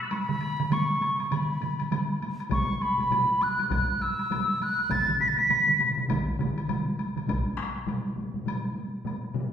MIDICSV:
0, 0, Header, 1, 4, 480
1, 0, Start_track
1, 0, Tempo, 600000
1, 82, Time_signature, 4, 2, 24, 8
1, 3922, Tempo, 592885
1, 7668, End_track
2, 0, Start_track
2, 0, Title_t, "Piccolo"
2, 0, Program_c, 0, 72
2, 20, Note_on_c, 0, 93, 48
2, 41, Note_off_c, 0, 93, 0
2, 46, Note_on_c, 0, 90, 51
2, 60, Note_on_c, 0, 88, 50
2, 62, Note_off_c, 0, 90, 0
2, 88, Note_off_c, 0, 88, 0
2, 93, Note_on_c, 0, 85, 51
2, 113, Note_on_c, 0, 83, 90
2, 125, Note_off_c, 0, 85, 0
2, 584, Note_on_c, 0, 85, 77
2, 596, Note_off_c, 0, 83, 0
2, 1045, Note_off_c, 0, 85, 0
2, 1049, Note_on_c, 0, 83, 70
2, 1737, Note_off_c, 0, 83, 0
2, 2018, Note_on_c, 0, 85, 88
2, 2256, Note_on_c, 0, 83, 83
2, 2268, Note_off_c, 0, 85, 0
2, 2741, Note_on_c, 0, 90, 84
2, 2753, Note_off_c, 0, 83, 0
2, 2973, Note_off_c, 0, 90, 0
2, 2995, Note_on_c, 0, 90, 78
2, 3214, Note_on_c, 0, 88, 87
2, 3226, Note_off_c, 0, 90, 0
2, 3702, Note_on_c, 0, 90, 87
2, 3714, Note_off_c, 0, 88, 0
2, 3931, Note_on_c, 0, 93, 95
2, 3943, Note_off_c, 0, 90, 0
2, 4159, Note_off_c, 0, 93, 0
2, 4163, Note_on_c, 0, 95, 91
2, 4230, Note_on_c, 0, 93, 75
2, 4242, Note_off_c, 0, 95, 0
2, 4306, Note_on_c, 0, 95, 95
2, 4318, Note_off_c, 0, 93, 0
2, 4653, Note_off_c, 0, 95, 0
2, 7668, End_track
3, 0, Start_track
3, 0, Title_t, "Taiko and cinematic ensemble drums"
3, 89, Note_on_c, 9, 48, 51
3, 169, Note_off_c, 9, 48, 0
3, 230, Note_on_c, 9, 47, 95
3, 233, Note_on_c, 9, 48, 19
3, 310, Note_off_c, 9, 47, 0
3, 313, Note_off_c, 9, 48, 0
3, 330, Note_on_c, 9, 48, 42
3, 410, Note_off_c, 9, 48, 0
3, 477, Note_on_c, 9, 47, 95
3, 557, Note_off_c, 9, 47, 0
3, 568, Note_on_c, 9, 47, 91
3, 575, Note_on_c, 9, 48, 62
3, 648, Note_off_c, 9, 47, 0
3, 655, Note_off_c, 9, 48, 0
3, 716, Note_on_c, 9, 48, 17
3, 796, Note_off_c, 9, 48, 0
3, 810, Note_on_c, 9, 48, 47
3, 890, Note_off_c, 9, 48, 0
3, 955, Note_on_c, 9, 48, 20
3, 956, Note_on_c, 9, 47, 67
3, 1035, Note_off_c, 9, 48, 0
3, 1036, Note_off_c, 9, 47, 0
3, 1048, Note_on_c, 9, 48, 53
3, 1054, Note_on_c, 9, 47, 104
3, 1128, Note_off_c, 9, 48, 0
3, 1134, Note_off_c, 9, 47, 0
3, 1197, Note_on_c, 9, 48, 19
3, 1277, Note_off_c, 9, 48, 0
3, 1287, Note_on_c, 9, 48, 51
3, 1301, Note_on_c, 9, 47, 68
3, 1367, Note_off_c, 9, 48, 0
3, 1381, Note_off_c, 9, 47, 0
3, 1437, Note_on_c, 9, 48, 18
3, 1451, Note_on_c, 9, 47, 62
3, 1517, Note_off_c, 9, 48, 0
3, 1531, Note_off_c, 9, 47, 0
3, 1531, Note_on_c, 9, 48, 65
3, 1533, Note_on_c, 9, 47, 96
3, 1611, Note_off_c, 9, 48, 0
3, 1613, Note_off_c, 9, 47, 0
3, 1682, Note_on_c, 9, 48, 17
3, 1762, Note_off_c, 9, 48, 0
3, 1778, Note_on_c, 9, 48, 54
3, 1858, Note_off_c, 9, 48, 0
3, 1913, Note_on_c, 9, 48, 20
3, 1993, Note_off_c, 9, 48, 0
3, 1996, Note_on_c, 9, 45, 95
3, 2010, Note_on_c, 9, 41, 86
3, 2012, Note_on_c, 9, 48, 65
3, 2076, Note_off_c, 9, 45, 0
3, 2090, Note_off_c, 9, 41, 0
3, 2092, Note_off_c, 9, 48, 0
3, 2156, Note_on_c, 9, 48, 19
3, 2236, Note_off_c, 9, 48, 0
3, 2252, Note_on_c, 9, 48, 46
3, 2332, Note_off_c, 9, 48, 0
3, 2384, Note_on_c, 9, 45, 70
3, 2464, Note_off_c, 9, 45, 0
3, 2485, Note_on_c, 9, 45, 93
3, 2489, Note_on_c, 9, 48, 60
3, 2565, Note_off_c, 9, 45, 0
3, 2569, Note_off_c, 9, 48, 0
3, 2635, Note_on_c, 9, 48, 20
3, 2715, Note_off_c, 9, 48, 0
3, 2732, Note_on_c, 9, 48, 46
3, 2812, Note_off_c, 9, 48, 0
3, 2866, Note_on_c, 9, 45, 68
3, 2878, Note_on_c, 9, 48, 20
3, 2946, Note_off_c, 9, 45, 0
3, 2958, Note_off_c, 9, 48, 0
3, 2960, Note_on_c, 9, 45, 88
3, 2967, Note_on_c, 9, 41, 98
3, 2969, Note_on_c, 9, 48, 58
3, 3040, Note_off_c, 9, 45, 0
3, 3047, Note_off_c, 9, 41, 0
3, 3049, Note_off_c, 9, 48, 0
3, 3115, Note_on_c, 9, 48, 20
3, 3195, Note_off_c, 9, 48, 0
3, 3207, Note_on_c, 9, 48, 51
3, 3287, Note_off_c, 9, 48, 0
3, 3352, Note_on_c, 9, 48, 19
3, 3432, Note_off_c, 9, 48, 0
3, 3445, Note_on_c, 9, 45, 85
3, 3447, Note_on_c, 9, 48, 65
3, 3525, Note_off_c, 9, 45, 0
3, 3527, Note_off_c, 9, 48, 0
3, 3594, Note_on_c, 9, 48, 18
3, 3674, Note_off_c, 9, 48, 0
3, 3688, Note_on_c, 9, 48, 51
3, 3768, Note_off_c, 9, 48, 0
3, 3831, Note_on_c, 9, 48, 21
3, 3911, Note_off_c, 9, 48, 0
3, 3917, Note_on_c, 9, 48, 64
3, 3923, Note_on_c, 9, 41, 84
3, 3925, Note_on_c, 9, 45, 64
3, 3932, Note_on_c, 9, 47, 64
3, 3998, Note_off_c, 9, 48, 0
3, 4004, Note_off_c, 9, 41, 0
3, 4006, Note_off_c, 9, 45, 0
3, 4013, Note_off_c, 9, 47, 0
3, 4066, Note_on_c, 9, 48, 21
3, 4067, Note_on_c, 9, 45, 60
3, 4075, Note_on_c, 9, 47, 74
3, 4147, Note_off_c, 9, 48, 0
3, 4148, Note_off_c, 9, 45, 0
3, 4156, Note_off_c, 9, 47, 0
3, 4165, Note_on_c, 9, 45, 61
3, 4170, Note_on_c, 9, 47, 75
3, 4246, Note_off_c, 9, 45, 0
3, 4251, Note_off_c, 9, 47, 0
3, 4306, Note_on_c, 9, 48, 46
3, 4387, Note_off_c, 9, 48, 0
3, 4402, Note_on_c, 9, 45, 68
3, 4404, Note_on_c, 9, 47, 67
3, 4407, Note_on_c, 9, 48, 61
3, 4483, Note_off_c, 9, 45, 0
3, 4485, Note_off_c, 9, 47, 0
3, 4488, Note_off_c, 9, 48, 0
3, 4544, Note_on_c, 9, 45, 58
3, 4554, Note_on_c, 9, 48, 20
3, 4556, Note_on_c, 9, 47, 73
3, 4625, Note_off_c, 9, 45, 0
3, 4635, Note_off_c, 9, 48, 0
3, 4637, Note_off_c, 9, 47, 0
3, 4642, Note_on_c, 9, 48, 47
3, 4644, Note_on_c, 9, 45, 68
3, 4652, Note_on_c, 9, 47, 73
3, 4723, Note_off_c, 9, 48, 0
3, 4725, Note_off_c, 9, 45, 0
3, 4733, Note_off_c, 9, 47, 0
3, 4786, Note_on_c, 9, 45, 69
3, 4794, Note_on_c, 9, 48, 21
3, 4800, Note_on_c, 9, 47, 69
3, 4867, Note_off_c, 9, 45, 0
3, 4875, Note_off_c, 9, 48, 0
3, 4881, Note_off_c, 9, 47, 0
3, 4883, Note_on_c, 9, 45, 92
3, 4889, Note_on_c, 9, 48, 65
3, 4892, Note_on_c, 9, 41, 96
3, 4901, Note_on_c, 9, 47, 98
3, 4964, Note_off_c, 9, 45, 0
3, 4970, Note_off_c, 9, 48, 0
3, 4973, Note_off_c, 9, 41, 0
3, 4982, Note_off_c, 9, 47, 0
3, 5127, Note_on_c, 9, 45, 94
3, 5127, Note_on_c, 9, 47, 94
3, 5132, Note_on_c, 9, 48, 52
3, 5208, Note_off_c, 9, 45, 0
3, 5208, Note_off_c, 9, 47, 0
3, 5213, Note_off_c, 9, 48, 0
3, 5278, Note_on_c, 9, 48, 20
3, 5359, Note_off_c, 9, 48, 0
3, 5363, Note_on_c, 9, 45, 89
3, 5369, Note_on_c, 9, 47, 95
3, 5374, Note_on_c, 9, 48, 64
3, 5444, Note_off_c, 9, 45, 0
3, 5450, Note_off_c, 9, 47, 0
3, 5455, Note_off_c, 9, 48, 0
3, 5514, Note_on_c, 9, 48, 20
3, 5595, Note_off_c, 9, 48, 0
3, 5611, Note_on_c, 9, 48, 52
3, 5691, Note_off_c, 9, 48, 0
3, 5750, Note_on_c, 9, 45, 58
3, 5754, Note_on_c, 9, 47, 68
3, 5756, Note_on_c, 9, 48, 23
3, 5831, Note_off_c, 9, 45, 0
3, 5835, Note_off_c, 9, 47, 0
3, 5837, Note_off_c, 9, 48, 0
3, 5841, Note_on_c, 9, 45, 72
3, 5848, Note_on_c, 9, 48, 57
3, 5851, Note_on_c, 9, 41, 88
3, 5922, Note_off_c, 9, 45, 0
3, 5929, Note_off_c, 9, 48, 0
3, 5932, Note_off_c, 9, 41, 0
3, 5995, Note_on_c, 9, 48, 19
3, 6076, Note_off_c, 9, 48, 0
3, 6081, Note_on_c, 9, 37, 63
3, 6090, Note_on_c, 9, 48, 46
3, 6162, Note_off_c, 9, 37, 0
3, 6171, Note_off_c, 9, 48, 0
3, 6239, Note_on_c, 9, 48, 21
3, 6320, Note_off_c, 9, 48, 0
3, 6321, Note_on_c, 9, 45, 84
3, 6328, Note_on_c, 9, 48, 55
3, 6402, Note_off_c, 9, 45, 0
3, 6409, Note_off_c, 9, 48, 0
3, 6481, Note_on_c, 9, 48, 19
3, 6560, Note_on_c, 9, 45, 62
3, 6562, Note_off_c, 9, 48, 0
3, 6573, Note_on_c, 9, 48, 41
3, 6641, Note_off_c, 9, 45, 0
3, 6654, Note_off_c, 9, 48, 0
3, 6706, Note_on_c, 9, 45, 60
3, 6717, Note_on_c, 9, 48, 41
3, 6787, Note_off_c, 9, 45, 0
3, 6798, Note_off_c, 9, 48, 0
3, 6802, Note_on_c, 9, 45, 82
3, 6810, Note_on_c, 9, 48, 51
3, 6883, Note_off_c, 9, 45, 0
3, 6891, Note_off_c, 9, 48, 0
3, 6957, Note_on_c, 9, 48, 17
3, 7038, Note_off_c, 9, 48, 0
3, 7044, Note_on_c, 9, 48, 45
3, 7125, Note_off_c, 9, 48, 0
3, 7194, Note_on_c, 9, 48, 16
3, 7275, Note_off_c, 9, 48, 0
3, 7279, Note_on_c, 9, 45, 81
3, 7285, Note_on_c, 9, 48, 57
3, 7359, Note_off_c, 9, 45, 0
3, 7366, Note_off_c, 9, 48, 0
3, 7434, Note_on_c, 9, 48, 16
3, 7515, Note_off_c, 9, 48, 0
3, 7517, Note_on_c, 9, 45, 97
3, 7525, Note_on_c, 9, 48, 45
3, 7598, Note_off_c, 9, 45, 0
3, 7606, Note_off_c, 9, 48, 0
3, 7668, End_track
4, 0, Start_track
4, 0, Title_t, "Drums"
4, 88, Note_on_c, 9, 76, 50
4, 168, Note_off_c, 9, 76, 0
4, 326, Note_on_c, 9, 76, 44
4, 406, Note_off_c, 9, 76, 0
4, 478, Note_on_c, 9, 76, 38
4, 558, Note_off_c, 9, 76, 0
4, 575, Note_on_c, 9, 76, 51
4, 655, Note_off_c, 9, 76, 0
4, 817, Note_on_c, 9, 76, 45
4, 897, Note_off_c, 9, 76, 0
4, 960, Note_on_c, 9, 76, 41
4, 1040, Note_off_c, 9, 76, 0
4, 1054, Note_on_c, 9, 76, 53
4, 1134, Note_off_c, 9, 76, 0
4, 1293, Note_on_c, 9, 76, 39
4, 1373, Note_off_c, 9, 76, 0
4, 1437, Note_on_c, 9, 76, 42
4, 1517, Note_off_c, 9, 76, 0
4, 1536, Note_on_c, 9, 76, 54
4, 1616, Note_off_c, 9, 76, 0
4, 1780, Note_on_c, 9, 76, 42
4, 1860, Note_off_c, 9, 76, 0
4, 1922, Note_on_c, 9, 76, 41
4, 2002, Note_off_c, 9, 76, 0
4, 2009, Note_on_c, 9, 76, 50
4, 2089, Note_off_c, 9, 76, 0
4, 2253, Note_on_c, 9, 76, 35
4, 2333, Note_off_c, 9, 76, 0
4, 2404, Note_on_c, 9, 76, 34
4, 2484, Note_off_c, 9, 76, 0
4, 2496, Note_on_c, 9, 76, 44
4, 2576, Note_off_c, 9, 76, 0
4, 2730, Note_on_c, 9, 76, 38
4, 2810, Note_off_c, 9, 76, 0
4, 2876, Note_on_c, 9, 76, 40
4, 2956, Note_off_c, 9, 76, 0
4, 2972, Note_on_c, 9, 76, 47
4, 3052, Note_off_c, 9, 76, 0
4, 3213, Note_on_c, 9, 76, 41
4, 3293, Note_off_c, 9, 76, 0
4, 3354, Note_on_c, 9, 76, 38
4, 3434, Note_off_c, 9, 76, 0
4, 3455, Note_on_c, 9, 76, 54
4, 3535, Note_off_c, 9, 76, 0
4, 3694, Note_on_c, 9, 76, 40
4, 3774, Note_off_c, 9, 76, 0
4, 3831, Note_on_c, 9, 76, 33
4, 3911, Note_off_c, 9, 76, 0
4, 3925, Note_on_c, 9, 76, 46
4, 4006, Note_off_c, 9, 76, 0
4, 4169, Note_on_c, 9, 76, 36
4, 4250, Note_off_c, 9, 76, 0
4, 4314, Note_on_c, 9, 76, 34
4, 4394, Note_off_c, 9, 76, 0
4, 4410, Note_on_c, 9, 76, 48
4, 4491, Note_off_c, 9, 76, 0
4, 4653, Note_on_c, 9, 76, 43
4, 4733, Note_off_c, 9, 76, 0
4, 4889, Note_on_c, 9, 76, 52
4, 4970, Note_off_c, 9, 76, 0
4, 5141, Note_on_c, 9, 76, 37
4, 5221, Note_off_c, 9, 76, 0
4, 5278, Note_on_c, 9, 76, 41
4, 5359, Note_off_c, 9, 76, 0
4, 5371, Note_on_c, 9, 76, 48
4, 5452, Note_off_c, 9, 76, 0
4, 5614, Note_on_c, 9, 76, 42
4, 5695, Note_off_c, 9, 76, 0
4, 5761, Note_on_c, 9, 76, 37
4, 5842, Note_off_c, 9, 76, 0
4, 5857, Note_on_c, 9, 76, 45
4, 5938, Note_off_c, 9, 76, 0
4, 6339, Note_on_c, 9, 76, 33
4, 6420, Note_off_c, 9, 76, 0
4, 6820, Note_on_c, 9, 76, 45
4, 6901, Note_off_c, 9, 76, 0
4, 7297, Note_on_c, 9, 76, 34
4, 7378, Note_off_c, 9, 76, 0
4, 7668, End_track
0, 0, End_of_file